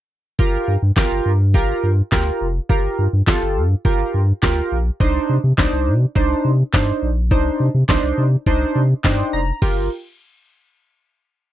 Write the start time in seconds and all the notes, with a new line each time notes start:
0.39 G1 F4 G4 A#4, kick
0.68 G2
0.82 G2
0.96 G1 F4 G4 A#4, kick, snare, clap
1.11 G1
1.26 G2
1.54 G1 F4 G4 A#4, kick
1.83 G2
2.12 D2 F4 G4 A#4, kick, snare, clap
2.41 F1
2.69 G1 F4 G4 A#4, kick
2.99 G2
3.13 G2
3.27 G1 F4 G4 A4, kick, snare, clap
3.42 G1
3.56 G2
3.85 G1 F4 G4 A#4, kick
4.14 G2
4.42 D2 F4 G4 A#4, kick, snare, clap
4.72 A#1
5.00 C2 D4 D#4 C5, kick
5.29 C3
5.44 C3
5.58 C2 D4 D#4 C5, kick, snare, clap
5.73 C2
5.87 C3
6.15 C2 D4 D#4 C5, kick
6.45 C3
6.73 G2 D4 D#4 C5, kick, snare, clap
7.02 A#1
7.31 C2 D4 D#4 C5, kick
7.60 C3
7.74 C3
7.89 C2 D4 D#4 C5, kick, snare, clap
8.03 C2
8.18 C3
8.46 C2 D4 D#4 C5, kick
8.75 C3
9.04 G2 D4 D#4 C5 G5, kick, snare, clap
9.33 F1 A#5
9.62 G1 F4 G4 A#4, kick, crash